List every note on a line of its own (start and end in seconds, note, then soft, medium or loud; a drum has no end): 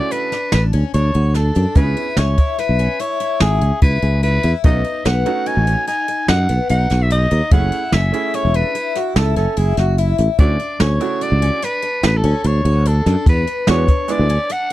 0.00 0.28 C#3 medium
0.00 0.28 A3 medium
0.00 0.28 E4 medium
0.00 0.29 F#4 medium
0.00 0.13 D5 medium
0.11 0.30 D4 medium
0.11 0.53 B4 medium
0.11 closed hi-hat medium
0.32 0.50 D4 medium
0.32 snare soft
0.32 closed hi-hat medium
0.52 0.71 A1 medium
0.52 0.71 D4 medium
0.52 0.63 B4 medium
0.52 snare loud
0.52 closed hi-hat medium
0.73 0.83 D2 medium
0.73 0.91 C#4 medium
0.73 closed hi-hat medium
0.94 1.12 D2 medium
0.94 1.12 D4 medium
0.94 1.37 C#5 medium
0.94 closed hi-hat medium
1.14 1.50 D2 medium
1.14 1.33 F#4 medium
1.14 closed hi-hat medium
1.34 1.53 D4 medium
1.34 1.78 A4 medium
1.34 snare soft
1.34 closed hi-hat medium
1.55 1.65 F#2 medium
1.55 1.74 D4 medium
1.55 closed hi-hat medium
1.75 1.94 C#2 medium
1.75 2.05 B3 medium
1.75 2.05 C#4 medium
1.75 1.95 C#4 medium
1.75 2.06 E4 medium
1.75 2.06 G#4 medium
1.75 2.20 B4 medium
1.75 kick loud
1.75 closed hi-hat medium
1.96 2.15 E4 medium
1.96 closed hi-hat medium
2.17 2.35 C#2 medium
2.17 2.36 C#4 medium
2.17 2.61 C#5 medium
2.17 snare loud
2.17 closed hi-hat medium
2.38 2.56 E4 medium
2.38 kick medium
2.38 closed hi-hat medium
2.58 2.77 E4 medium
2.58 3.02 B4 medium
2.58 snare soft
2.58 closed hi-hat medium
2.69 2.87 B1 medium
2.79 2.97 C#4 medium
2.79 closed hi-hat medium
3.00 3.18 E4 medium
3.00 3.41 C#5 medium
3.00 closed hi-hat medium
3.20 3.38 E4 medium
3.20 closed hi-hat medium
3.40 3.59 G#1 medium
3.40 3.59 E4 medium
3.40 3.80 G#4 medium
3.40 snare loud
3.40 closed hi-hat medium
3.61 3.71 C#2 medium
3.61 3.80 C#4 medium
3.61 closed hi-hat medium
3.82 4.00 C#2 medium
3.82 4.00 E4 medium
3.82 4.21 B4 medium
3.82 kick loud
3.82 closed hi-hat medium
4.02 4.37 C#2 medium
4.02 4.20 G#4 medium
4.02 closed hi-hat medium
4.23 4.41 E4 medium
4.23 4.52 B4 medium
4.23 closed hi-hat medium
4.43 4.53 E2 medium
4.43 4.62 E4 medium
4.43 closed hi-hat medium
4.64 4.82 B1 medium
4.64 4.79 A3 medium
4.64 4.82 B3 medium
4.64 4.79 C#4 medium
4.64 4.79 D#4 medium
4.64 4.80 F#4 medium
4.64 5.07 D#5 medium
4.64 kick loud
4.64 closed hi-hat medium
4.85 5.03 D#4 medium
4.85 closed hi-hat medium
5.05 5.23 B1 medium
5.05 5.23 B3 medium
5.05 5.49 F#5 medium
5.05 snare loud
5.05 closed hi-hat medium
5.26 5.84 A3 medium
5.26 5.84 C#4 medium
5.26 5.44 D#4 medium
5.26 5.84 D#4 medium
5.26 5.84 F#4 medium
5.26 closed hi-hat medium
5.46 5.64 D#4 medium
5.46 5.87 G#5 loud
5.46 closed hi-hat medium
5.57 5.74 A1 medium
5.67 5.85 C#4 medium
5.67 closed hi-hat medium
5.87 6.06 D#4 medium
5.87 6.26 G#5 medium
5.87 closed hi-hat medium
6.08 6.26 D#4 medium
6.08 closed hi-hat medium
6.28 6.46 F#2 medium
6.28 6.47 D#4 medium
6.28 6.67 F#5 medium
6.28 snare loud
6.28 closed hi-hat medium
6.49 6.58 B1 medium
6.49 6.67 B3 medium
6.49 closed hi-hat medium
6.69 6.87 B1 medium
6.69 6.88 D#4 medium
6.69 7.04 F#5 loud
6.69 closed hi-hat medium
6.90 7.25 B1 medium
6.90 7.08 F#4 medium
6.90 snare soft
6.90 closed hi-hat medium
7.02 7.12 E5 medium
7.11 7.29 D#4 medium
7.11 7.54 D#5 medium
7.11 closed hi-hat medium
7.31 7.40 D#2 medium
7.31 7.49 D#4 medium
7.31 closed hi-hat medium
7.51 7.69 F#1 medium
7.51 7.81 A3 medium
7.51 7.70 C#4 medium
7.51 7.81 C#4 medium
7.51 7.81 E4 medium
7.51 7.82 G#4 medium
7.51 7.95 F#5 medium
7.51 kick loud
7.51 closed hi-hat medium
7.72 7.90 E4 medium
7.72 closed hi-hat medium
7.92 8.11 F#1 medium
7.92 8.11 C#4 medium
7.92 8.37 E5 medium
7.92 snare loud
7.92 closed hi-hat medium
8.12 8.70 A3 medium
8.12 8.71 C#4 medium
8.12 8.71 E4 medium
8.12 8.31 E4 medium
8.12 8.71 G#4 medium
8.12 closed hi-hat medium
8.34 8.52 E4 medium
8.34 8.57 C#5 medium
8.34 closed hi-hat medium
8.45 8.62 E1 medium
8.54 8.72 D4 medium
8.54 8.96 B4 medium
8.54 closed hi-hat medium
8.75 8.93 E4 medium
8.75 closed hi-hat medium
8.96 9.13 E4 medium
8.96 9.18 F#4 medium
8.96 snare soft
8.96 closed hi-hat medium
9.16 9.33 C#2 medium
9.16 9.34 E4 medium
9.16 9.36 A4 loud
9.16 snare loud
9.16 closed hi-hat medium
9.36 9.45 F#1 medium
9.36 9.54 C#4 medium
9.36 9.60 A4 loud
9.36 snare soft
9.36 closed hi-hat medium
9.57 9.75 F#1 medium
9.57 9.75 E4 medium
9.57 9.77 G#4 loud
9.57 closed hi-hat medium
9.77 10.12 F#1 medium
9.77 9.95 F#4 medium
9.77 10.00 F#4 medium
9.77 snare soft
9.77 closed hi-hat medium
9.98 10.16 E4 medium
9.98 10.29 E4 medium
9.98 closed hi-hat medium
10.18 10.27 A1 medium
10.18 10.36 E4 medium
10.18 closed hi-hat medium
10.39 10.56 D2 medium
10.39 10.53 A3 medium
10.39 10.57 C#4 medium
10.39 10.54 C#4 medium
10.39 10.54 E4 medium
10.39 10.54 F#4 medium
10.39 10.82 D5 medium
10.39 kick loud
10.39 closed hi-hat medium
10.60 10.77 D4 medium
10.60 closed hi-hat medium
10.80 10.98 D2 medium
10.80 10.98 C#4 medium
10.80 11.24 C#5 medium
10.80 snare loud
10.80 closed hi-hat medium
11.00 11.58 C#3 medium
11.00 11.58 A3 medium
11.00 11.19 D4 medium
11.00 11.58 E4 medium
11.00 11.59 F#4 medium
11.00 closed hi-hat medium
11.21 11.39 D4 medium
11.21 11.66 D5 medium
11.21 closed hi-hat medium
11.32 11.49 C#2 medium
11.42 11.60 C#4 medium
11.42 closed hi-hat medium
11.62 11.80 D4 medium
11.62 12.04 B4 medium
11.62 snare soft
11.62 closed hi-hat medium
11.82 12.00 D4 medium
11.82 closed hi-hat medium
12.03 12.21 A1 medium
12.03 12.21 D4 medium
12.03 12.19 B4 medium
12.03 snare loud
12.03 closed hi-hat medium
12.17 12.48 A4 medium
12.24 12.33 D2 medium
12.24 12.42 C#4 medium
12.24 closed hi-hat medium
12.44 12.62 D2 medium
12.44 12.62 D4 medium
12.44 12.89 C#5 medium
12.44 closed hi-hat medium
12.65 13.00 D2 medium
12.65 12.83 F#4 medium
12.65 closed hi-hat medium
12.85 13.03 D4 medium
12.85 13.28 A4 medium
12.85 closed hi-hat medium
13.06 13.15 F#2 loud
13.06 13.24 D4 medium
13.06 snare soft
13.06 closed hi-hat medium
13.26 13.44 E2 medium
13.26 13.45 B3 medium
13.26 13.66 B4 medium
13.26 kick loud
13.26 closed hi-hat medium
13.47 13.65 D4 medium
13.47 closed hi-hat medium
13.67 13.86 E2 medium
13.67 13.82 G#3 medium
13.67 13.82 B3 medium
13.67 13.86 B3 medium
13.67 13.82 D4 medium
13.67 13.83 F#4 medium
13.67 14.13 C#5 medium
13.67 snare loud
13.67 closed hi-hat medium
13.88 14.06 D4 medium
13.88 kick medium
13.88 closed hi-hat medium
14.08 14.23 G#3 medium
14.08 14.23 B3 medium
14.08 14.27 D4 medium
14.08 14.24 D4 medium
14.08 14.24 E4 medium
14.08 14.54 D5 loud
14.08 closed hi-hat medium
14.19 14.37 D2 medium
14.29 14.47 C#4 medium
14.29 closed hi-hat medium
14.49 14.68 D4 medium
14.49 14.73 F#5 loud
14.49 closed hi-hat medium